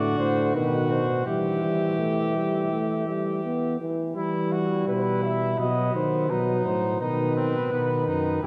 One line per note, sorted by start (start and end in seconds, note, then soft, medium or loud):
0.00 0.18 A2 medium
0.00 0.56 D3 medium
0.00 0.53 F#4 medium
0.00 0.19 D5 medium
0.19 0.54 A2 medium
0.19 0.54 C5 medium
0.54 1.25 B2 medium
0.54 1.10 D#3 medium
0.54 1.25 F#4 medium
0.54 0.92 B4 medium
0.90 1.26 C5 medium
1.26 3.76 E3 medium
1.26 1.62 G3 medium
1.26 3.76 G4 medium
1.26 3.76 E5 medium
1.63 1.99 G3 medium
1.99 2.37 A3 medium
2.35 2.71 G3 medium
2.71 3.07 A3 medium
3.07 3.43 G3 medium
3.44 3.79 B3 medium
3.80 4.15 E3 medium
4.16 4.84 E3 medium
4.16 5.55 G3 medium
4.16 4.53 E4 medium
4.52 4.87 F#4 medium
4.87 5.58 B2 medium
4.87 5.60 E4 medium
4.87 4.96 B4 medium
4.95 5.03 C5 medium
5.02 5.23 B4 medium
5.24 5.59 E5 medium
5.59 5.94 B2 medium
5.59 6.29 F#3 medium
5.59 6.31 B3 medium
5.59 5.94 D#5 medium
5.95 6.32 D#3 medium
5.95 6.32 C5 medium
6.30 6.65 B2 medium
6.30 7.00 F#3 medium
6.30 7.00 D#4 medium
6.30 6.67 B4 medium
6.66 7.01 A2 medium
6.66 7.01 C5 medium
7.01 7.71 B2 medium
7.01 7.55 D#3 medium
7.01 7.36 D#4 medium
7.01 8.40 B4 medium
7.36 7.73 C4 medium
7.71 8.07 B2 medium
7.71 8.42 D#3 medium
7.71 8.06 B3 medium
8.07 8.43 F#2 medium
8.07 8.42 D#4 medium
8.42 8.47 G2 medium
8.42 8.47 E4 medium
8.42 8.47 G4 medium